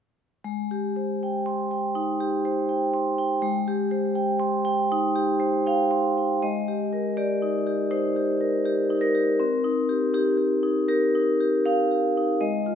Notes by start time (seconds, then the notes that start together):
0.44 G#3
0.71 G4
0.96 C5
1.23 G5
1.46 C6
1.71 G5
1.95 D#4
2.20 G4
2.45 C5
2.69 G5
2.94 C6
3.18 G5
3.42 G#3
3.68 G4
3.91 C5
4.15 G5
4.40 C6
4.65 G5
4.92 D#4
5.16 G4
5.40 C5
5.66 F5 G5
5.91 C6
6.18 G5
6.42 G#3 D#5
6.68 G4
6.93 A#4
7.17 G4 D5
7.42 D#4
7.67 G4
7.91 D#4 C5
8.16 G4
8.41 A#4
8.65 G4
8.90 D#4
9.01 A#4
9.15 G4
9.40 C4
9.64 D#4
9.89 G4
10.14 D#4 G4
10.37 G4
10.63 D#4
10.88 G4 A#4
11.15 D#4
11.40 G4
11.66 D#4 F5
11.91 G4
12.17 D#4
12.41 G#3 D#5
12.66 F4